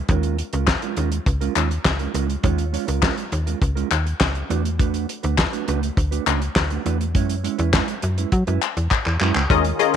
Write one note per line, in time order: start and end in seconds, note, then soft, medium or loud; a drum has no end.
0.09 0.42 D#2 loud
0.09 0.36 G#3 medium
0.09 0.36 C#4 medium
0.09 0.37 F4 medium
0.09 0.37 A#4 medium
0.09 kick loud
0.09 closed hi-hat medium
0.23 closed hi-hat medium
0.39 muted clean electric guitar stroke soft
0.39 closed hi-hat medium
0.53 0.76 C#2 medium
0.53 0.67 G#3 medium
0.53 0.67 C#4 medium
0.53 0.67 F4 medium
0.53 0.68 A#4 medium
0.53 closed hi-hat soft
0.67 kick loud
0.67 snare loud
0.67 clap medium
0.82 0.96 G#3 medium
0.82 0.96 C#4 medium
0.82 0.97 F4 medium
0.82 0.97 A#4 medium
0.82 closed hi-hat medium
0.97 1.20 D#2 medium
0.97 1.17 G#3 medium
0.97 1.12 C#4 medium
0.97 1.11 F4 medium
0.97 1.11 A#4 medium
0.97 closed hi-hat medium
1.12 muted clean electric guitar stroke soft
1.12 closed hi-hat medium
1.26 1.49 C#2 medium
1.26 muted clean electric guitar stroke soft
1.26 kick medium
1.26 closed hi-hat medium
1.41 1.54 G#3 medium
1.41 1.54 C#4 medium
1.41 1.55 F4 medium
1.41 1.56 A#4 medium
1.41 closed hi-hat soft
1.55 1.78 D#2 medium
1.55 1.71 G#3 medium
1.55 1.70 C#4 medium
1.55 1.69 F4 medium
1.55 1.69 C#5 medium
1.55 clap medium
1.55 closed hi-hat medium
1.70 muted clean electric guitar stroke soft
1.70 closed hi-hat soft
1.85 2.08 C#2 medium
1.85 muted clean electric guitar stroke soft
1.85 kick loud
1.85 snare loud
1.85 clap medium
1.99 2.12 G#3 soft
1.99 2.13 C#4 medium
1.99 2.14 F4 soft
1.99 2.14 A#4 medium
1.99 closed hi-hat soft
2.14 2.37 C#2 medium
2.14 2.33 G#3 medium
2.14 2.28 C#4 medium
2.14 2.28 F4 medium
2.14 2.27 A#4 medium
2.14 closed hi-hat medium
2.29 muted clean electric guitar stroke soft
2.29 closed hi-hat medium
2.43 2.77 D#2 loud
2.43 2.63 G#3 medium
2.43 2.63 C#4 medium
2.43 2.63 F4 medium
2.43 2.64 C#5 medium
2.43 kick loud
2.43 closed hi-hat medium
2.58 closed hi-hat medium
2.72 2.87 G#3 medium
2.72 2.87 C#4 medium
2.72 2.86 F4 medium
2.72 2.87 C#5 medium
2.72 closed hi-hat medium
2.87 3.11 C#2 medium
2.87 3.01 G#3 soft
2.87 3.02 C#4 medium
2.87 3.02 F4 medium
2.87 3.02 A#4 medium
2.87 closed hi-hat soft
3.02 3.22 G#3 medium
3.02 3.17 C#4 medium
3.02 3.17 F4 medium
3.02 3.16 A#4 medium
3.02 kick loud
3.02 snare loud
3.02 clap medium
3.17 muted clean electric guitar stroke soft
3.17 closed hi-hat soft
3.32 3.55 D#2 medium
3.32 muted clean electric guitar stroke soft
3.32 closed hi-hat medium
3.46 3.60 G#3 soft
3.46 3.60 C#4 soft
3.46 3.61 F4 medium
3.46 3.61 A#4 medium
3.46 closed hi-hat medium
3.62 3.84 C#2 medium
3.62 kick medium
3.62 closed hi-hat medium
3.75 3.89 G#3 medium
3.75 3.90 C#4 medium
3.75 3.90 F4 medium
3.75 3.90 A#4 medium
3.75 closed hi-hat soft
3.90 4.14 D#2 loud
3.90 muted clean electric guitar stroke soft
3.90 clap medium
3.90 closed hi-hat medium
4.06 muted clean electric guitar stroke soft
4.06 closed hi-hat soft
4.21 4.43 C#2 medium
4.21 muted clean electric guitar stroke soft
4.21 kick loud
4.21 snare loud
4.21 clap medium
4.35 muted clean electric guitar stroke soft
4.35 closed hi-hat soft
4.49 5.06 E2 medium
4.49 4.69 A3 medium
4.49 4.64 D4 medium
4.49 4.64 F#4 medium
4.49 4.63 B4 medium
4.49 closed hi-hat medium
4.64 muted clean electric guitar stroke soft
4.64 closed hi-hat medium
4.79 5.06 A3 medium
4.79 5.07 D4 medium
4.79 5.07 F#4 medium
4.79 5.07 B4 medium
4.79 kick loud
4.79 closed hi-hat medium
4.94 closed hi-hat medium
5.08 muted clean electric guitar stroke soft
5.08 closed hi-hat medium
5.23 5.46 D2 medium
5.23 5.37 A3 medium
5.23 5.37 D4 medium
5.23 5.38 F#4 medium
5.23 5.38 B4 medium
5.23 closed hi-hat soft
5.38 muted clean electric guitar stroke medium
5.38 kick loud
5.38 snare loud
5.38 clap medium
5.53 5.66 A3 medium
5.53 5.67 D4 medium
5.53 5.67 F#4 medium
5.53 5.68 B4 medium
5.53 closed hi-hat soft
5.67 5.90 C#2 medium
5.67 5.87 A3 medium
5.67 5.82 D4 medium
5.67 5.82 F#4 medium
5.67 5.81 B4 loud
5.67 closed hi-hat medium
5.82 muted clean electric guitar stroke soft
5.82 closed hi-hat medium
5.97 6.20 D2 medium
5.97 muted clean electric guitar stroke soft
5.97 kick loud
5.97 closed hi-hat medium
6.11 6.25 A3 medium
6.11 6.25 D4 medium
6.11 6.26 F#4 medium
6.11 6.27 B4 medium
6.11 closed hi-hat medium
6.26 6.49 C#2 medium
6.26 6.41 A3 medium
6.26 6.41 D4 medium
6.26 6.40 F#4 medium
6.26 6.41 C#5 medium
6.26 clap medium
6.26 closed hi-hat medium
6.41 muted clean electric guitar stroke soft
6.41 closed hi-hat soft
6.56 6.78 D2 medium
6.56 kick medium
6.56 snare loud
6.56 clap medium
6.70 6.84 A3 medium
6.70 6.84 D4 medium
6.70 6.85 F#4 medium
6.70 6.85 B4 medium
6.70 closed hi-hat soft
6.85 7.17 E2 medium
6.85 7.04 A3 medium
6.85 6.99 D4 medium
6.85 6.99 F#4 medium
6.85 6.98 B4 medium
6.85 closed hi-hat medium
7.00 muted clean electric guitar stroke soft
7.00 closed hi-hat soft
7.14 7.48 F#2 loud
7.14 7.34 G#3 medium
7.14 7.34 C#4 medium
7.14 7.34 E4 medium
7.14 7.35 C#5 medium
7.14 kick loud
7.14 closed hi-hat medium
7.29 closed hi-hat medium
7.44 7.58 G#3 medium
7.44 7.58 C#4 medium
7.44 7.57 E4 medium
7.44 7.58 C#5 medium
7.44 closed hi-hat medium
7.58 7.81 E2 medium
7.58 7.72 G#3 soft
7.58 7.73 C#4 medium
7.58 7.73 E4 medium
7.58 7.74 B4 medium
7.58 closed hi-hat soft
7.73 7.93 G#3 medium
7.73 7.88 C#4 medium
7.73 7.88 E4 medium
7.73 7.87 B4 medium
7.73 kick loud
7.73 snare loud
7.73 clap medium
7.88 muted clean electric guitar stroke soft
7.88 closed hi-hat medium
8.02 8.26 F#2 medium
8.02 muted clean electric guitar stroke soft
8.02 closed hi-hat medium
8.18 8.31 G#3 soft
8.18 8.32 C#4 soft
8.18 8.32 E4 soft
8.18 8.32 B4 medium
8.18 closed hi-hat medium
8.32 8.44 F#3 loud
8.32 kick loud
8.32 closed hi-hat medium
8.47 8.59 F#2 medium
8.47 8.61 G#3 medium
8.47 8.61 C#4 medium
8.47 8.61 E4 medium
8.47 8.62 B4 medium
8.47 closed hi-hat soft
8.61 muted clean electric guitar stroke soft
8.61 clap medium
8.61 closed hi-hat medium
8.77 8.88 E2 medium
8.77 muted clean electric guitar stroke soft
8.77 closed hi-hat soft
8.91 muted clean electric guitar stroke soft
8.91 kick loud
8.91 clap medium
9.06 9.17 E2 medium
9.06 muted clean electric guitar stroke soft
9.06 clap medium
9.20 9.32 F#2 medium
9.20 9.40 G#3 medium
9.20 9.35 C#4 medium
9.20 9.35 E4 medium
9.20 9.34 B4 medium
9.20 clap medium
9.35 9.47 C#2 medium
9.35 muted clean electric guitar stroke soft
9.35 clap medium
9.49 9.73 D#2 loud
9.49 9.96 D#3 medium
9.49 9.69 G#3 medium
9.49 9.96 C#4 medium
9.49 9.63 C#4 medium
9.49 9.64 C#4 medium
9.49 9.96 F4 medium
9.49 9.63 F4 medium
9.49 9.64 F4 medium
9.49 9.96 G#4 medium
9.49 9.63 G#4 medium
9.49 9.63 A#4 medium
9.49 9.64 D#5 loud
9.49 kick loud
9.49 closed hi-hat medium
9.64 muted clean electric guitar stroke medium
9.64 closed hi-hat medium
9.79 9.96 C#4 medium
9.79 9.96 F4 medium
9.79 9.96 G#4 medium
9.79 9.96 A#4 medium
9.79 9.96 D#5 loud
9.79 muted clean electric guitar stroke soft
9.79 closed hi-hat medium